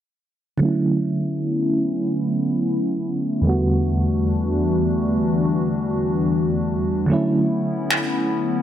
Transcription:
0.58 fm electric piano D3 F#3 A3, analog synth pad D3 A3 B3 C#4 E4
0.63 fm electric piano C#4 E4
3.41 fm electric piano E2 D3 G3, analog synth pad E3 G3 D4 F#4
3.46 fm electric piano A3 B3 F#4
7.06 fm electric piano D3 F#3 A3, analog synth pad D3 A3 B3 C#4 E4
7.12 fm electric piano C#4 E4
7.91 finger snap

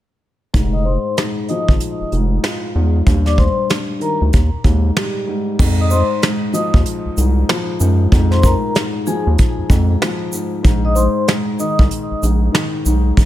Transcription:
0.54 analog synth bass F1, grand piano G#2, kick, closed hi-hat
0.73 vibraphone D#5 D#6
0.85 grand piano G#2, vibraphone C5 C6
1.17 grand piano G#2, cross-stick, snare, closed hi-hat
1.49 grand piano F3, vibraphone D#5 D#6, closed hi-hat
1.68 analog synth bass G#1, kick
1.80 closed hi-hat
2.00 analog synth bass F1
2.12 analog synth bass F1, grand piano G#2, closed hi-hat
2.43 grand piano F4, cross-stick, snare, closed hi-hat
2.75 analog synth bass E2, grand piano G#2
3.06 analog synth bass D#2, grand piano G2, kick, closed hi-hat
3.26 vibraphone D5 D6, snare
3.38 grand piano G2, vibraphone C5 C6, kick
3.70 grand piano G2, cross-stick, snare, closed hi-hat
4.00 grand piano D#3, vibraphone A#4 A#5, closed hi-hat
4.21 analog synth bass D2
4.33 analog synth bass D#2, kick, closed hi-hat
4.53 analog synth bass D#2
4.64 analog synth bass D#2, grand piano G#2, kick, closed hi-hat
4.97 grand piano G3, cross-stick, snare, closed hi-hat
5.27 grand piano G#2
5.59 analog synth bass F2, grand piano G#2, kick, crash
5.80 vibraphone D#5 D#6
5.90 grand piano G#2, vibraphone C5 C6, shaker
6.22 grand piano G#2, cross-stick, snare, closed hi-hat
6.53 grand piano F3, vibraphone D#5 D#6, closed hi-hat, shaker
6.74 analog synth bass D#2, kick
6.86 closed hi-hat
7.05 analog synth bass C2
7.17 analog synth bass C2, grand piano G#2, closed hi-hat, shaker
7.49 grand piano F3, cross-stick, snare, closed hi-hat
7.80 analog synth bass F#2, grand piano G#2, shaker
8.12 analog synth bass F2, grand piano G#2, kick, closed hi-hat
8.31 vibraphone C5 C6, snare
8.43 grand piano G#2, vibraphone A#4 A#5, kick, shaker
8.75 grand piano G#2, cross-stick, snare, closed hi-hat
9.07 grand piano F3, vibraphone G#4 G#5, shaker
9.27 analog synth bass D#2
9.38 kick, closed hi-hat
9.58 analog synth bass F2
9.69 analog synth bass F2, grand piano G#2, kick, shaker
10.01 grand piano F3, cross-stick, snare, closed hi-hat
10.33 grand piano G#2, shaker
10.63 analog synth bass A#1, grand piano G#2, kick, closed hi-hat
10.85 vibraphone D#5 D#6
10.95 grand piano G#2, vibraphone C5 C6, shaker
11.28 grand piano G#2, cross-stick, snare, closed hi-hat
11.59 grand piano D#3, vibraphone D#5 D#6, shaker
11.79 analog synth bass C2, kick
11.91 closed hi-hat
12.11 analog synth bass A#1
12.22 analog synth bass A#1, grand piano G#2, closed hi-hat, shaker
12.52 grand piano D#3, cross-stick, snare, closed hi-hat
12.86 analog synth bass B1, grand piano G#2, shaker
13.17 analog synth bass A#1, kick, closed hi-hat

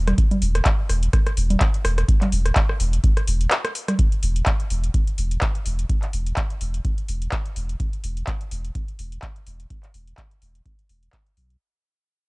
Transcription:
Already playing: sub bass E1
0.07 cross-stick, closed hi-hat, low conga
0.18 kick, closed hi-hat
0.31 closed hi-hat, low conga
0.42 sub bass E1, open hi-hat
0.55 cross-stick, closed hi-hat
0.65 kick, clap, closed hi-hat
0.89 sub bass E1, cross-stick, open hi-hat
1.03 closed hi-hat
1.13 kick, cross-stick, closed hi-hat
1.27 cross-stick, closed hi-hat
1.37 sub bass E1, open hi-hat
1.50 closed hi-hat, low conga
1.60 kick, cross-stick, clap, closed hi-hat
1.74 closed hi-hat
1.85 sub bass E1, cross-stick, open hi-hat
1.98 cross-stick, closed hi-hat
2.08 kick, closed hi-hat
2.21 clap, closed hi-hat, low conga
2.32 sub bass E1, open hi-hat
2.46 cross-stick, closed hi-hat
2.56 kick, clap, closed hi-hat
2.69 cross-stick
2.80 sub bass E1, open hi-hat
2.93 closed hi-hat
3.04 kick, closed hi-hat
3.17 cross-stick, closed hi-hat
3.27 sub bass E1, open hi-hat
3.41 closed hi-hat
3.51 cross-stick, clap, closed hi-hat
3.65 cross-stick, closed hi-hat
3.75 open hi-hat
3.88 cross-stick, closed hi-hat, low conga
3.99 kick, closed hi-hat
4.12 closed hi-hat
4.23 sub bass E1, open hi-hat
4.36 closed hi-hat
4.46 kick, clap, closed hi-hat
4.60 closed hi-hat
4.70 sub bass E1, open hi-hat
4.84 closed hi-hat
4.94 kick, closed hi-hat
5.07 closed hi-hat
5.18 sub bass E1, open hi-hat
5.31 closed hi-hat
5.41 kick, clap, closed hi-hat
5.55 closed hi-hat
5.66 sub bass E1, open hi-hat
5.79 closed hi-hat
5.89 kick, closed hi-hat
6.02 clap, closed hi-hat
6.13 sub bass E1, open hi-hat
6.26 closed hi-hat
6.37 kick, clap, closed hi-hat
6.50 closed hi-hat
6.61 sub bass E1, open hi-hat
6.74 closed hi-hat
6.85 kick, closed hi-hat
6.98 closed hi-hat
7.08 sub bass E1, open hi-hat
7.22 closed hi-hat
7.32 kick, clap, closed hi-hat
7.46 closed hi-hat
7.56 sub bass E1, open hi-hat
7.69 closed hi-hat
7.80 kick, closed hi-hat
7.93 closed hi-hat
8.04 sub bass E1, open hi-hat
8.17 closed hi-hat
8.27 kick, clap, closed hi-hat
8.41 closed hi-hat
8.51 sub bass E1, open hi-hat
8.65 closed hi-hat
8.75 kick, closed hi-hat
8.88 closed hi-hat
8.99 sub bass E1, open hi-hat
9.12 closed hi-hat
9.22 kick, clap, closed hi-hat
9.36 closed hi-hat
9.47 sub bass E1, open hi-hat
9.60 closed hi-hat
9.70 kick, closed hi-hat
9.83 clap, closed hi-hat
9.94 sub bass E1, open hi-hat
10.07 closed hi-hat
10.18 kick, clap, closed hi-hat
10.31 closed hi-hat
10.42 sub bass E1, open hi-hat
10.55 closed hi-hat
10.66 kick, closed hi-hat
10.79 closed hi-hat
10.89 sub bass E1, open hi-hat
11.03 closed hi-hat
11.13 kick, clap, closed hi-hat
11.27 closed hi-hat
11.37 sub bass B1, open hi-hat
11.50 closed hi-hat

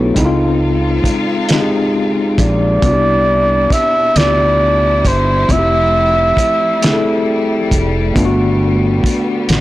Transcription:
Already playing: fretless electric bass B1, string section F#3 G3 A3 B3, tine electric piano A3 B3 D4 E4 F#4 G4 A4 B4 C#5
0.15 fretless electric bass C#2, string section C#3 C4 D#4 F4, tine electric piano G#3 C4 D#4, kick, closed hi-hat
0.19 tine electric piano E4
0.25 tine electric piano F4
1.04 kick, closed hi-hat
1.49 tine electric piano G#3 C4 D#4, snare, closed hi-hat
1.54 tine electric piano G4
1.60 tine electric piano G#4
2.38 fretless electric bass A#1, flugelhorn D5, kick, closed hi-hat
2.82 fretless electric bass C2, string section B2 C3 D4 E4, tine electric piano B3 D4 E4, kick, closed hi-hat
2.87 tine electric piano F#4
2.93 tine electric piano G4
3.70 flugelhorn E5, muted fretless electric bass stroke, kick, closed hi-hat
4.16 fretless electric bass D2, tine electric piano B3 D4 E4, flugelhorn D5, snare, closed hi-hat
4.21 tine electric piano F4
4.27 tine electric piano G4
5.05 fretless electric bass G1, flugelhorn C5, kick, closed hi-hat
5.48 fretless electric bass F1, string section F3 G3 A3, tine electric piano A3 C4 E4, flugelhorn E5, kick, closed hi-hat
5.52 tine electric piano F4
5.59 tine electric piano G4
6.37 muted fretless electric bass stroke, kick, closed hi-hat
6.82 tine electric piano A3 C4 E4, snare, closed hi-hat
6.86 tine electric piano G#4
6.93 tine electric piano A4
7.71 fretless electric bass F1, kick, closed hi-hat
8.14 fretless electric bass G1, string section D3 B3, tine electric piano A3 B3 D4, kick, closed hi-hat
8.18 tine electric piano F4
8.25 tine electric piano F#4
9.04 muted fretless electric bass stroke, kick, closed hi-hat
9.49 fretless electric bass A1, snare, closed hi-hat

